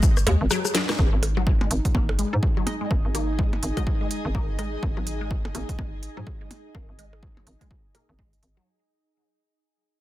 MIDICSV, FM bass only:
0, 0, Header, 1, 2, 480
1, 0, Start_track
1, 0, Tempo, 480000
1, 987, Time_signature, 4, 2, 24, 8
1, 10004, End_track
2, 0, Start_track
2, 0, Title_t, "FM bass"
2, 0, Program_c, 0, 39
2, 267, Note_on_c, 0, 39, 112
2, 356, Note_off_c, 0, 39, 0
2, 410, Note_on_c, 0, 32, 92
2, 471, Note_off_c, 0, 32, 0
2, 987, Note_on_c, 0, 32, 99
2, 1077, Note_off_c, 0, 32, 0
2, 1131, Note_on_c, 0, 32, 78
2, 1649, Note_off_c, 0, 32, 0
2, 1707, Note_on_c, 0, 32, 94
2, 1797, Note_off_c, 0, 32, 0
2, 1947, Note_on_c, 0, 32, 71
2, 2244, Note_off_c, 0, 32, 0
2, 2330, Note_on_c, 0, 44, 94
2, 2391, Note_off_c, 0, 44, 0
2, 2907, Note_on_c, 0, 32, 93
2, 2997, Note_off_c, 0, 32, 0
2, 3050, Note_on_c, 0, 32, 79
2, 3569, Note_off_c, 0, 32, 0
2, 3627, Note_on_c, 0, 32, 91
2, 3717, Note_off_c, 0, 32, 0
2, 4251, Note_on_c, 0, 32, 91
2, 4769, Note_off_c, 0, 32, 0
2, 4827, Note_on_c, 0, 32, 93
2, 4917, Note_off_c, 0, 32, 0
2, 4971, Note_on_c, 0, 32, 81
2, 5489, Note_off_c, 0, 32, 0
2, 5547, Note_on_c, 0, 32, 96
2, 5637, Note_off_c, 0, 32, 0
2, 5787, Note_on_c, 0, 32, 70
2, 6084, Note_off_c, 0, 32, 0
2, 6170, Note_on_c, 0, 44, 84
2, 6231, Note_off_c, 0, 44, 0
2, 6747, Note_on_c, 0, 32, 94
2, 6836, Note_off_c, 0, 32, 0
2, 6890, Note_on_c, 0, 32, 77
2, 7409, Note_off_c, 0, 32, 0
2, 7467, Note_on_c, 0, 32, 96
2, 7557, Note_off_c, 0, 32, 0
2, 8091, Note_on_c, 0, 32, 91
2, 8369, Note_off_c, 0, 32, 0
2, 8427, Note_on_c, 0, 32, 88
2, 8594, Note_off_c, 0, 32, 0
2, 10004, End_track
0, 0, End_of_file